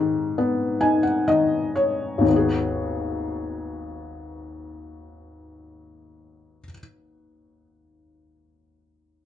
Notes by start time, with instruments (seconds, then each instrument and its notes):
Already playing: felt piano G#2 D#3, kalimba G#4
0.38 felt piano B3
0.81 felt piano D#4 G#5
1.03 felt piano F#5
1.28 felt piano D#3 D#5
1.76 felt piano C#5
2.18 felt piano G#1 D#2
2.25 felt piano D#3 B3
2.33 felt piano F#4 G#4